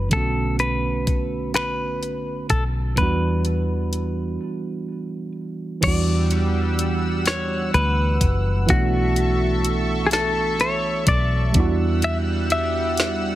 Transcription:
0.00 0.13 F#4 medium
0.09 2.46 B1 medium
0.09 2.92 D3 soft
0.09 2.93 A3 soft
0.09 2.94 B3 soft
0.09 0.57 A4 medium
0.09 kick loud
0.09 closed hi-hat medium
0.15 2.95 C#4 soft
0.15 2.96 F#4 medium
0.59 1.54 B4 medium
0.59 closed hi-hat soft
1.07 kick medium
1.07 closed hi-hat medium
1.54 2.50 B4 medium
1.54 finger snap medium
1.54 closed hi-hat soft
2.03 closed hi-hat soft
2.50 2.94 B1 medium
2.50 2.63 A4 medium
2.50 kick medium
2.50 closed hi-hat medium
2.95 4.36 E2 medium
2.95 5.78 E3 soft
2.95 5.79 G3 soft
2.95 5.80 B3 soft
2.95 5.32 B4 medium
2.95 kick loud
2.95 closed hi-hat medium
3.01 5.81 D4 soft
3.01 5.82 F#4 medium
3.45 closed hi-hat soft
3.93 closed hi-hat medium
5.81 7.70 E2 loud
5.81 8.64 E3 medium
5.81 8.64 G3 medium
5.81 8.66 G3 medium
5.81 8.65 B3 medium
5.81 7.22 D5 medium
5.81 8.66 F#5 medium
5.81 8.66 E6 medium
5.81 kick loud
5.81 closed hi-hat medium
5.81 crash medium
5.86 8.66 D4 medium
5.86 8.67 F#4 medium
6.31 closed hi-hat soft
6.79 closed hi-hat medium
7.26 7.74 C#5 medium
7.26 snare medium
7.26 closed hi-hat medium
7.74 8.18 D2 medium
7.74 8.72 B4 loud
7.74 closed hi-hat soft
8.21 8.65 F#1 medium
8.21 kick medium
8.21 closed hi-hat medium
8.66 11.03 B1 medium
8.66 11.49 E3 medium
8.66 11.50 A3 medium
8.66 11.51 B3 medium
8.66 10.06 F#4 medium
8.66 11.52 A4 medium
8.66 11.52 E5 medium
8.66 11.52 C#6 medium
8.66 kick loud
8.66 closed hi-hat medium
8.72 11.52 D4 medium
8.72 11.53 F#4 medium
9.16 closed hi-hat medium
9.65 closed hi-hat medium
10.06 10.12 G#4 medium
10.11 10.61 A4 medium
10.11 snare loud
10.11 closed hi-hat medium
10.60 11.08 C#5 medium
10.60 closed hi-hat soft
11.07 11.51 B1 medium
11.07 12.04 D5 loud
11.07 kick medium
11.07 closed hi-hat medium
11.52 13.35 E2 medium
11.52 13.35 G3 medium
11.52 13.35 B3 medium
11.52 13.35 D4 medium
11.52 13.35 F#5 medium
11.52 13.35 E6 medium
11.52 kick loud
11.52 closed hi-hat medium
11.58 13.35 E4 medium
11.58 13.35 F#4 medium
12.02 12.17 E5 loud
12.02 closed hi-hat medium
12.50 13.35 E5 loud
12.50 closed hi-hat medium
12.97 snare loud
12.97 closed hi-hat medium

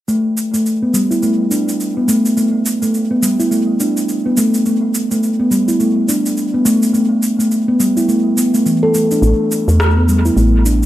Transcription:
0.08 0.24 A3 medium
0.08 cabasa soft
0.37 cabasa medium
0.54 0.60 A3 medium
0.54 cabasa soft
0.66 cabasa soft
0.82 0.89 B3 medium
0.94 1.10 G3 medium
0.94 cabasa medium
1.11 1.21 E4 medium
1.11 cabasa soft
1.23 1.50 A3 medium
1.23 cabasa soft
1.51 1.67 D4 medium
1.51 cabasa medium
1.69 cabasa soft
1.80 cabasa soft
1.97 2.03 B3 medium
2.08 2.18 A3 medium
2.08 cabasa medium
2.25 cabasa soft
2.37 2.53 A3 medium
2.37 cabasa soft
2.66 cabasa medium
2.82 2.89 A3 medium
2.82 cabasa soft
2.94 cabasa soft
3.11 3.17 B3 medium
3.22 3.39 G3 medium
3.22 cabasa medium
3.40 3.50 E4 medium
3.40 cabasa soft
3.51 3.78 A3 medium
3.51 cabasa soft
3.80 3.96 D4 medium
3.80 cabasa medium
3.97 cabasa soft
4.09 cabasa soft
4.26 4.32 B3 medium
4.37 4.47 A3 medium
4.37 cabasa medium
4.54 cabasa soft
4.66 4.82 A3 medium
4.66 cabasa soft
4.94 cabasa medium
5.11 5.18 A3 medium
5.11 cabasa soft
5.23 cabasa soft
5.40 5.46 B3 medium
5.51 5.67 G3 medium
5.51 cabasa medium
5.68 5.79 E4 medium
5.68 cabasa soft
5.80 6.07 A3 medium
5.80 cabasa soft
6.09 6.24 D4 medium
6.09 cabasa medium
6.26 cabasa soft
6.37 cabasa soft
6.54 6.61 B3 medium
6.65 6.75 A3 medium
6.65 cabasa medium
6.83 cabasa soft
6.94 7.10 A3 medium
6.94 cabasa soft
7.23 cabasa medium
7.39 7.46 A3 medium
7.39 cabasa soft
7.51 cabasa soft
7.68 7.75 B3 medium
7.80 7.96 G3 medium
7.80 cabasa medium
7.97 8.07 E4 medium
7.97 cabasa soft
8.08 8.24 A3 medium
8.08 cabasa soft
8.37 8.53 B3 medium
8.37 cabasa medium
8.54 8.65 A3 medium
8.54 cabasa soft
8.66 8.82 E3 medium
8.66 cabasa soft
8.83 8.94 A4 medium
8.94 9.04 A3 medium
8.94 cabasa medium
9.11 9.22 D4 medium
9.11 cabasa soft
9.22 9.34 A1 medium
9.22 9.39 A3 medium
9.22 cabasa soft
9.52 cabasa medium
9.68 10.30 E2 medium
9.68 9.75 A3 medium
9.68 cabasa soft
9.80 cross-stick medium
9.80 cabasa soft
9.97 10.03 B3 medium
10.09 10.25 G3 medium
10.09 cabasa medium
10.25 10.36 E4 medium
10.25 cabasa soft
10.37 10.86 A1 medium
10.37 10.64 A3 medium
10.37 cabasa soft
10.66 10.82 D4 medium
10.66 cabasa medium

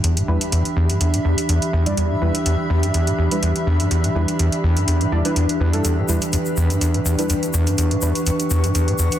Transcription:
0.00 0.18 E2 medium
0.00 9.19 E3 medium
0.00 9.19 D4 medium
0.00 5.83 G4 medium
0.00 9.19 G4 medium
0.00 7.34 E5 medium
0.00 6.21 B5 medium
0.00 closed hi-hat medium
0.17 0.23 A2 medium
0.17 closed hi-hat soft
0.28 0.39 E2 medium
0.28 0.35 G3 medium
0.28 0.35 D4 medium
0.28 0.35 E4 medium
0.28 0.35 B4 medium
0.41 closed hi-hat soft
0.52 0.63 E2 medium
0.52 closed hi-hat medium
0.65 closed hi-hat soft
0.77 0.91 E2 loud
0.90 0.99 G2 loud
0.90 closed hi-hat medium
1.01 1.15 E2 medium
1.01 closed hi-hat medium
1.14 1.20 A2 medium
1.14 closed hi-hat soft
1.25 1.36 E2 medium
1.38 closed hi-hat medium
1.49 1.60 E2 medium
1.49 closed hi-hat medium
1.62 closed hi-hat soft
1.73 1.88 E2 loud
1.86 1.96 G2 loud
1.86 1.96 G3 medium
1.86 1.96 D4 medium
1.86 1.96 E4 medium
1.86 1.96 D5 medium
1.86 closed hi-hat soft
1.97 2.12 E2 medium
1.97 closed hi-hat medium
2.11 2.17 A2 medium
2.22 2.32 E2 medium
2.22 2.33 G3 medium
2.22 2.33 D4 medium
2.22 2.33 E4 medium
2.22 2.33 B4 medium
2.35 closed hi-hat soft
2.46 2.57 E2 medium
2.46 closed hi-hat medium
2.70 2.85 E2 loud
2.83 2.92 G2 loud
2.83 closed hi-hat soft
2.94 3.09 E2 medium
2.94 closed hi-hat medium
3.07 3.13 A2 medium
3.07 closed hi-hat soft
3.18 3.29 E2 medium
3.31 3.38 G3 medium
3.31 3.38 D4 medium
3.31 3.38 E4 medium
3.31 3.38 B4 medium
3.31 closed hi-hat soft
3.43 3.53 E2 medium
3.43 closed hi-hat medium
3.56 closed hi-hat soft
3.67 3.81 E2 loud
3.80 3.89 G2 loud
3.80 closed hi-hat soft
3.91 4.06 E2 medium
3.91 closed hi-hat medium
4.04 4.10 A2 medium
4.04 closed hi-hat soft
4.15 4.26 E2 medium
4.15 4.22 G3 medium
4.15 4.22 D4 medium
4.15 4.22 E4 medium
4.15 4.22 B4 medium
4.28 closed hi-hat soft
4.39 4.50 E2 medium
4.39 closed hi-hat medium
4.52 closed hi-hat soft
4.64 4.78 E2 medium
4.77 4.86 G2 loud
4.77 closed hi-hat soft
4.88 5.02 E2 medium
4.88 closed hi-hat medium
5.01 5.07 A2 medium
5.01 closed hi-hat soft
5.12 5.23 E2 medium
5.12 5.19 G3 medium
5.12 5.19 D4 medium
5.12 5.19 E4 medium
5.12 5.19 D5 medium
5.25 5.35 G3 medium
5.25 5.35 D4 medium
5.25 5.35 E4 medium
5.25 5.35 B4 loud
5.25 closed hi-hat soft
5.36 5.47 E2 medium
5.36 closed hi-hat medium
5.49 closed hi-hat soft
5.60 5.75 E2 loud
5.60 5.71 G3 medium
5.60 5.71 D4 medium
5.60 5.71 E4 medium
5.60 5.71 B4 medium
5.73 5.83 G2 loud
5.73 5.83 G3 loud
5.73 5.83 D4 medium
5.73 5.83 E4 medium
5.73 5.83 A4 loud
5.73 closed hi-hat soft
5.85 5.99 E2 medium
5.85 9.19 B4 medium
5.85 closed hi-hat medium
5.85 shaker medium
5.98 6.04 A2 medium
6.06 6.20 E2 medium
6.06 6.20 G3 medium
6.06 6.20 D4 medium
6.06 6.20 E4 medium
6.06 6.20 B4 medium
6.06 9.19 C#6 medium
6.06 shaker medium
6.22 closed hi-hat medium
6.22 shaker soft
6.33 6.37 E2 medium
6.33 closed hi-hat medium
6.33 shaker soft
6.45 shaker soft
6.57 6.72 E2 medium
6.57 shaker medium
6.70 6.79 G2 loud
6.70 closed hi-hat soft
6.70 shaker soft
6.81 6.96 E2 medium
6.81 closed hi-hat medium
6.81 shaker soft
6.94 7.00 A2 medium
6.94 closed hi-hat soft
7.06 7.16 E2 medium
7.06 shaker medium
7.19 7.25 G3 medium
7.19 7.25 D4 medium
7.19 7.25 E4 medium
7.19 7.25 B4 medium
7.19 9.19 F#5 medium
7.19 closed hi-hat soft
7.19 shaker soft
7.29 7.34 E2 medium
7.29 closed hi-hat medium
7.29 shaker medium
7.43 closed hi-hat soft
7.43 shaker soft
7.54 7.68 E2 loud
7.54 shaker loud
7.67 7.76 G2 medium
7.67 closed hi-hat soft
7.67 shaker soft
7.78 7.93 E2 medium
7.78 closed hi-hat medium
7.78 shaker soft
7.91 7.97 A2 medium
7.91 closed hi-hat soft
8.02 8.13 E2 medium
8.02 8.09 G3 medium
8.02 8.09 D4 medium
8.02 8.09 E4 medium
8.02 8.09 B4 medium
8.02 shaker medium
8.15 closed hi-hat soft
8.15 shaker soft
8.26 8.31 E2 medium
8.26 closed hi-hat medium
8.26 shaker soft
8.40 closed hi-hat soft
8.40 shaker soft
8.50 8.65 E2 loud
8.50 shaker medium
8.64 8.73 G2 loud
8.64 closed hi-hat soft
8.64 shaker soft
8.75 8.89 E2 medium
8.75 closed hi-hat medium
8.75 shaker soft
8.88 8.94 A2 medium
8.88 closed hi-hat soft
8.99 9.10 E2 medium
8.99 shaker medium
9.12 closed hi-hat soft
9.12 shaker soft

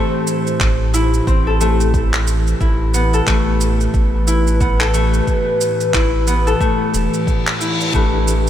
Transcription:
0.00 7.93 A2 medium
0.00 8.50 E3 medium
0.00 1.60 A3 loud
0.00 1.27 C4 medium
0.00 0.93 E4 medium
0.00 8.50 G4 medium
0.00 1.47 A4 medium
0.00 2.61 C5 medium
0.27 shaker medium
0.47 shaker soft
0.60 1.21 A1 medium
0.60 kick medium
0.60 clap medium
0.60 shaker soft
0.94 2.60 E4 medium
0.94 shaker medium
1.14 shaker soft
1.27 2.54 A1 medium
1.27 3.00 C4 medium
1.27 kick medium
1.27 shaker soft
1.47 3.13 A4 medium
1.61 3.27 A3 medium
1.61 shaker medium
1.81 shaker soft
1.94 kick medium
1.94 shaker soft
2.14 clap medium
2.27 shaker medium
2.47 shaker soft
2.61 3.21 A1 medium
2.61 4.27 E4 medium
2.61 kick loud
2.61 shaker soft
2.94 4.60 B3 medium
2.94 shaker medium
3.14 4.80 A4 medium
3.14 shaker soft
3.27 3.88 A1 medium
3.27 4.93 A3 loud
3.27 kick medium
3.27 clap medium
3.27 shaker soft
3.39 7.94 B4 medium
3.61 shaker medium
3.81 shaker soft
3.94 5.21 A1 loud
3.94 kick medium
3.94 shaker soft
4.27 5.94 E4 medium
4.27 shaker medium
4.47 shaker soft
4.61 6.27 B3 medium
4.61 kick loud
4.61 shaker soft
4.80 6.47 A4 medium
4.80 clap medium
4.94 6.60 A3 loud
4.94 shaker medium
5.14 shaker soft
5.27 kick medium
5.27 shaker soft
5.61 shaker medium
5.80 shaker soft
5.94 6.54 A1 medium
5.94 7.60 E4 medium
5.94 kick medium
5.94 clap medium
5.94 shaker soft
6.27 8.50 B3 medium
6.27 shaker medium
6.47 8.50 A4 medium
6.47 shaker soft
6.61 7.93 A3 medium
6.61 kick loud
6.61 reverse cymbal medium
6.61 shaker soft
6.94 7.08 E1 loud
6.94 shaker medium
7.14 shaker soft
7.27 kick medium
7.27 shaker soft
7.47 clap medium
7.61 8.50 E4 medium
7.61 shaker medium
7.81 shaker soft
7.92 8.50 A1 loud
7.92 8.50 A2 medium
7.92 8.50 E3 medium
7.92 8.50 A3 medium
7.92 8.50 D4 medium
7.92 8.50 G4 medium
7.92 kick loud
7.92 shaker soft
7.96 8.50 B4 medium
8.28 shaker medium

